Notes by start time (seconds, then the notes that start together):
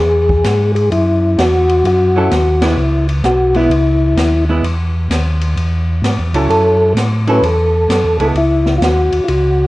0.00 E2 G#4
0.29 kick
0.44 G#2, snare, hi-hat pedal, ride
0.75 G#4, ride
0.91 F#2 E4, ride
1.38 E2 F#4, snare, hi-hat pedal, ride
1.69 ride
1.84 F#2 F#4, ride
2.16 F#3 C#4 E4 A4
2.31 D#2, snare, hi-hat pedal, ride
2.62 G#3 B3 E4, snare, ride
2.77 C#2
3.09 ride
3.24 B1 F#4, snare, hi-hat pedal, ride
3.55 G#3 B3 E4, ride
3.70 C#2, ride
4.16 D#2, snare, hi-hat pedal, ride
4.49 G#3 B3 E4
4.62 E2, ride
5.09 D#2, snare, hi-hat pedal, ride
5.41 ride
5.57 E2, ride
6.02 G#2, snare, hi-hat pedal, ride
6.18 E2
6.33 C#2 F#3 C#4 E4 A4, ride
6.49 F#2 A4, ride
6.95 A2, snare, hi-hat pedal, ride
7.27 F#3 C#4 E4 A4 B4, ride
7.42 E2 A4, ride
7.88 F#2, snare, hi-hat pedal, ride
8.03 E2
8.18 C#2 G#3 B3 E4 A4, ride
8.34 C#2 E4, ride
8.66 snare
8.78 D#2 F4
8.82 F#4, snare, hi-hat pedal, ride
9.12 D#2, ride
9.24 F4
9.28 C#2 F#4, ride